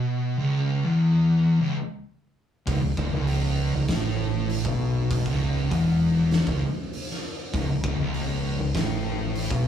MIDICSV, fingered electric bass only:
0, 0, Header, 1, 2, 480
1, 0, Start_track
1, 0, Key_signature, 4, "minor"
1, 0, Tempo, 607903
1, 184, Time_signature, 4, 2, 24, 8
1, 7641, End_track
2, 0, Start_track
2, 0, Title_t, "Fingered electric bass"
2, 0, Program_c, 0, 33
2, 2110, Note_on_c, 0, 25, 92
2, 2221, Note_off_c, 0, 25, 0
2, 2228, Note_on_c, 0, 25, 76
2, 2340, Note_off_c, 0, 25, 0
2, 2349, Note_on_c, 0, 26, 95
2, 2460, Note_off_c, 0, 26, 0
2, 2471, Note_on_c, 0, 25, 89
2, 2919, Note_off_c, 0, 25, 0
2, 2954, Note_on_c, 0, 25, 83
2, 3063, Note_off_c, 0, 25, 0
2, 3070, Note_on_c, 0, 33, 100
2, 3638, Note_off_c, 0, 33, 0
2, 3676, Note_on_c, 0, 35, 88
2, 4121, Note_off_c, 0, 35, 0
2, 4156, Note_on_c, 0, 25, 85
2, 4488, Note_off_c, 0, 25, 0
2, 4513, Note_on_c, 0, 28, 85
2, 5079, Note_off_c, 0, 28, 0
2, 5110, Note_on_c, 0, 25, 93
2, 5221, Note_off_c, 0, 25, 0
2, 5951, Note_on_c, 0, 25, 99
2, 6061, Note_off_c, 0, 25, 0
2, 6073, Note_on_c, 0, 25, 77
2, 6182, Note_off_c, 0, 25, 0
2, 6191, Note_on_c, 0, 26, 93
2, 6296, Note_off_c, 0, 26, 0
2, 6301, Note_on_c, 0, 25, 87
2, 6752, Note_off_c, 0, 25, 0
2, 6784, Note_on_c, 0, 25, 82
2, 6897, Note_off_c, 0, 25, 0
2, 6909, Note_on_c, 0, 33, 99
2, 7476, Note_off_c, 0, 33, 0
2, 7506, Note_on_c, 0, 35, 90
2, 7641, Note_off_c, 0, 35, 0
2, 7641, End_track
0, 0, End_of_file